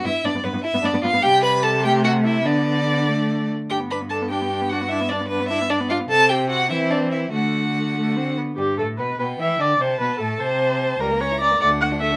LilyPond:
<<
  \new Staff \with { instrumentName = "Violin" } { \time 6/8 \key g \major \tempo 4. = 99 e''8 d''8 b'8 e''8 d''8 f''8 | g''8 b''8 a''8 g''8 fis''8 e''8 | d''2~ d''8 r8 | g''8 b''8 a''8 g''4 fis''8 |
e''8 d''8 b'8 e''8 d''8 f''8 | a''8 g''8 fis''8 e''8 d''8 e''8 | fis''2~ fis''8 r8 | r4. g''4. |
a''2. | ais''4. fis''4. | }
  \new Staff \with { instrumentName = "Violin" } { \time 6/8 \key g \major e'8 d'8 b8 e'8 d'8 f'8 | g'8 b'8 a'8 g'8 fis'8 e'8 | d'2~ d'8 r8 | g'8 b'8 a'8 g'4 fis'8 |
e'8 d'8 b8 e'8 d'8 f'8 | a'8 g'8 fis'8 e'8 d'8 e'8 | fis'2~ fis'8 r8 | g8 a8 b8 b8 e'8 d'8 |
c'8 b8 a8 c'4. | g16 ais16 cis'16 e'16 cis'16 ais16 a16 d'16 fis'16 d'16 a16 d'16 | }
  \new Staff \with { instrumentName = "Viola" } { \time 6/8 \key g \major b16 r16 b16 b16 b16 b16 r16 b16 b16 b16 b16 b16 | g4. a4. | b4. a4 r8 | d'16 b16 d'16 b16 d'16 b16 d'16 b16 d'16 b16 d'16 b16 |
d'16 b16 d'16 b16 d'16 b16 d'16 b16 d'16 b16 d'16 b16 | c'4. c'4. | a4. a8 c'8 b8 | g'8 a'8 b'8 b'8 e''8 d''8 |
c''8 b'8 a'8 c''4. | ais'8 cis''8 d''8 d''8 fis''8 e''8 | }
  \new Staff \with { instrumentName = "Cello" } { \clef bass \time 6/8 \key g \major g,16 r16 g,16 g,16 g,16 g,16 r16 g,16 g,16 g,16 g,16 g,16 | c2. | d2~ d8 r8 | g,2.~ |
g,2. | c4. e4. | d2~ d8 r8 | g,8 a,8 b,8 b,8 e8 d8 |
c8 b,8 a,8 c4. | cis,4~ cis,16 r16 d,4~ d,16 r16 | }
>>